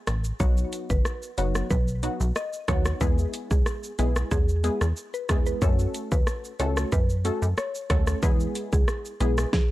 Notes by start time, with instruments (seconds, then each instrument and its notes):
0.07 analog synth bass A1, cross-stick, closed hi-hat, shaker
0.24 shaker
0.40 analog synth bass B1, synth stab F#3 B3 D#4 F#4, synth pluck C#5, kick, shaker
0.57 shaker
0.73 closed hi-hat, shaker
0.90 analog synth bass G#1, synth pluck B4, kick, shaker
1.05 cross-stick, shaker
1.23 shaker
1.38 analog synth bass F#1, synth stab F#3 B3 D#4 F#4, synth pluck C#5, closed hi-hat, shaker
1.55 cross-stick, shaker
1.70 analog synth bass B1, synth pluck B4, kick, shaker
1.88 shaker
2.03 synth stab F#3 B3 D#4 F#4, closed hi-hat, shaker
2.20 analog synth bass B1, shaker
2.36 synth pluck D#5, cross-stick, shaker
2.53 shaker
2.68 analog synth bass D#2, synth stab F#3 B3 D#4 F#4, synth pluck C#5, kick, cross-stick, closed hi-hat, shaker
2.85 cross-stick, shaker
3.01 analog synth bass E2, synth stab G#3 B3 E4 G#4, synth pluck B4, kick, shaker
3.18 shaker
3.34 closed hi-hat, shaker
3.51 analog synth bass C#2, synth pluck G#4, kick, shaker
3.66 cross-stick, shaker
3.84 shaker
3.99 analog synth bass B1, synth stab G#3 B3 E4 G#4, synth pluck B4, closed hi-hat, shaker
4.16 cross-stick, shaker
4.31 analog synth bass E2, synth pluck G#4, kick, shaker
4.49 shaker
4.64 synth stab G#3 B3 E4 G#4, closed hi-hat, shaker
4.81 analog synth bass E2, cross-stick, shaker
4.97 shaker
5.14 synth pluck B4, shaker
5.29 analog synth bass E2, synth stab G#3 B3 E4 G#4, kick, cross-stick, closed hi-hat, shaker
5.46 synth pluck B4, shaker
5.62 analog synth bass F#2, synth stab A3 C#4 F#4 A4, synth pluck C#5, kick, shaker
5.79 shaker
5.94 closed hi-hat, shaker
6.12 analog synth bass D#2, synth pluck B4, kick, shaker
6.27 cross-stick, shaker
6.44 shaker
6.59 analog synth bass C#2, synth stab A3 C#4 F#4 A4, synth pluck C#5, closed hi-hat, shaker
6.77 cross-stick, shaker
6.92 analog synth bass F#2, synth pluck B4, kick, shaker
7.10 shaker
7.25 synth stab A3 C#4 F#4 A4, closed hi-hat, shaker
7.42 analog synth bass F#2, shaker
7.57 synth pluck C#5, cross-stick, shaker
7.75 shaker
7.90 analog synth bass D#2, synth stab A3 C#4 F#4 A4, synth pluck C#5, kick, cross-stick, closed hi-hat, shaker
8.07 cross-stick, shaker
8.22 analog synth bass E2, synth stab G#3 B3 E4 G#4, synth pluck B4, kick, shaker
8.40 shaker
8.55 closed hi-hat, shaker
8.73 analog synth bass C#2, synth pluck G#4, kick, shaker
8.88 cross-stick, shaker
9.05 shaker
9.20 analog synth bass B1, synth stab G#3 B3 E4 G#4, synth pluck B4, closed hi-hat, shaker
9.38 cross-stick, shaker
9.53 synth pluck G#4, kick, snare